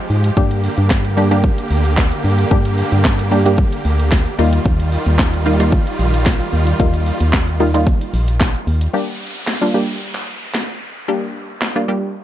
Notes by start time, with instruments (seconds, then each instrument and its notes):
Already playing: supersaw synth F3 G#3 G4
0.10 fm bass G#2, open hi-hat
0.24 closed hi-hat
0.37 fm bass G2, supersaw synth D3 A#3 G4, synth pluck G3 A#3 D4 G4, kick
0.51 closed hi-hat
0.64 open hi-hat
0.78 fm bass G2, closed hi-hat
0.90 kick, snare, clap
1.05 closed hi-hat
1.17 synth pluck G3 A#3 D4 G4, open hi-hat
1.31 synth pluck G3 A#3 D4 G4, closed hi-hat
1.44 kick
1.58 closed hi-hat
1.71 fm bass D2, open hi-hat
1.85 closed hi-hat
1.97 kick, snare, clap
2.12 closed hi-hat
2.24 fm bass G2, open hi-hat
2.38 closed hi-hat
2.51 fm bass G2, synth pluck G3 A#3 D4 G4, kick
2.65 closed hi-hat
2.78 open hi-hat
2.92 fm bass G2, closed hi-hat
3.04 kick, snare, clap
3.19 closed hi-hat
3.31 synth pluck G3 A#3 D4 G4, open hi-hat
3.46 synth pluck G3 A#3 D4 G4, closed hi-hat
3.58 kick
3.73 closed hi-hat
3.85 fm bass D2, open hi-hat
3.99 closed hi-hat
4.12 kick, snare, clap
4.26 closed hi-hat
4.39 fm bass D#2, supersaw synth D#3 G3 F4, synth pluck G3 A#3 D#4 F4, open hi-hat
4.53 closed hi-hat
4.65 fm bass D#2, kick
4.80 closed hi-hat
4.92 open hi-hat
5.06 fm bass D#2, closed hi-hat
5.19 kick, snare, clap
5.33 closed hi-hat
5.46 synth pluck G3 A#3 D#4 F4, open hi-hat
5.60 synth pluck G3 A#3 D#4 F4, closed hi-hat
5.72 kick
5.87 closed hi-hat
5.99 fm bass A#1, open hi-hat
6.14 closed hi-hat
6.26 kick, snare, clap
6.40 closed hi-hat
6.53 fm bass D#2, open hi-hat
6.67 closed hi-hat
6.79 fm bass D#2, synth pluck G3 A#3 D#4 F4, kick, shaker
6.94 closed hi-hat, shaker
7.06 open hi-hat, shaker
7.20 fm bass D#2, closed hi-hat, shaker
7.33 kick, snare, clap, shaker
7.48 closed hi-hat, shaker
7.60 synth pluck G3 A#3 D#4 F4, open hi-hat, shaker
7.74 synth pluck G3 A#3 D#4 F4, closed hi-hat, shaker
7.87 kick, shaker
8.01 closed hi-hat, shaker
8.14 fm bass A#1, open hi-hat, shaker
8.28 closed hi-hat, shaker
8.40 kick, snare, clap, shaker
8.55 closed hi-hat, shaker
8.67 fm bass D#2, open hi-hat, shaker
8.81 closed hi-hat, shaker
8.93 synth pluck G3 A#3 D4 G4, downlifter
9.47 snare, clap
9.61 synth pluck G3 A#3 D4 F4
9.74 synth pluck G3 A#3 D4 G4
10.15 clap
10.54 snare, clap
11.08 synth pluck G3 A#3 D4 G4
11.62 snare, clap
11.76 synth pluck G3 A#3 D4 F4
11.88 synth pluck G3 A#3 D4 G4